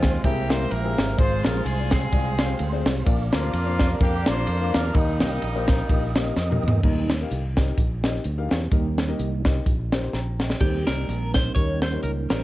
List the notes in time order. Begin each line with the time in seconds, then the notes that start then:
Already playing: D#2 G#3 C4 D#4 F4 G#4 C5 D#5 C6
0.03 kick, snare, ride
0.24 C2 C3 A#3 C4 E4 G4 G#4 E5 A#5, kick, ride
0.50 A#3 C4 E4 G4 A#4 C5, snare, ride
0.71 A#1 E4 G4 A#4, ride
0.84 A#3 C4 E4 G4 G#4
0.98 G#1, snare, ride
1.17 G#1 G#2 G#3 C4 F4 G#4 C5 F5 C6, kick, ride
1.44 A#1 G#3 C4 F4 G#4 A#4, snare, ride
1.65 C2 G#4, ride
1.78 G#3 C4 F4 G#4 D5
1.91 C4 F4 G#4, kick, snare, ride
2.12 C2 G#3 C4 F4 G#4 D5, kick, ride
2.38 G#3 C4 F4 G#4 C5, snare, ride
2.59 D2, ride
2.72 G#3 C4 F4 G#4 C5
2.86 C2, snare, ride
3.05 A#1 A#2 A#3 D4 F4 A#4 D5 D6, kick, ride
3.31 D2 A#3 D4 F4 A#4 C5, snare, ride
3.53 F2, ride
3.66 A#3 D4 F4 A#4 C5
3.79 kick, snare, ride
4.00 F2 A#3 D4 F4 G4 A#4 F5, kick, ride
4.26 A#1 A#3 D4 F4 A#4 C5 D5, snare, ride
4.47 F2, ride
4.60 A#3 D4 F4 A#4 F5
4.74 E2 A#4, snare, ride
4.94 D#2 D#3 G3 A#3 D#4 G4 A#4 D#5 G5 D#6, kick, ride
5.20 C2 A#3 D#4 G4 A#4 D#5, snare, ride
5.42 A#1, ride
5.55 A#3 D#4 G4 A#4 C5
5.68 A#5, kick, snare, ride
5.89 A#1 A#3 D#4 G4 A#4 D#5 G5, kick, ride
6.15 A#3 D#4 G4 A#4 D#5 F5, snare, ride
6.36 F2 D#5, snare
6.50 A#3 D#4 G4 A#4 D#5, mid tom
6.63 E2 D#5
6.68 floor tom
6.83 D#2 D#3 G3 A#3 D#4 G4 A#4 D#5, kick, crash
7.10 snare, closed hi-hat
7.21 D#4 G4 A#4 F5
7.31 C2, closed hi-hat
7.57 D#4 G4 A#4 D#5, kick, snare, closed hi-hat
7.78 A#1, kick, closed hi-hat
8.04 D#4 G4 A#4 D#5, snare, closed hi-hat
8.24 D2, closed hi-hat
8.38 D#4 G4 A#4 F5
8.51 E2, snare, closed hi-hat
8.71 D#2 D#3 G3 A#3 D#4 G4 A#4 D#5, kick, closed hi-hat
8.98 snare, closed hi-hat
9.08 D#4 G4 A#4 D#5
9.19 C2, closed hi-hat
9.45 D#4 G4 A#4 D#5, kick, snare, closed hi-hat
9.66 A#1, kick, closed hi-hat
9.92 D#4 G4 A#4 C5, snare, closed hi-hat
10.13 A#1 G5 A#5, snare
10.40 D#5 G5, snare
10.50 snare
10.60 D#2 D#3 G3 A#3 C4 D#4 G4 A#4 C5, kick, crash
10.87 C2 D#4 G4 A#4 D5, snare, closed hi-hat
11.09 A#1, closed hi-hat
11.34 D#4 G4 A#4 C5, kick, snare, closed hi-hat
11.55 D#2 D#3 G3 C#4 D#4 G4 A#4 C#5, kick, closed hi-hat
11.82 C5, snare, closed hi-hat
11.92 D#4 G4 A#4 C#5
12.03 C#2 A#4, closed hi-hat
12.30 A1 D#4 G4 A#4 C5, snare, closed hi-hat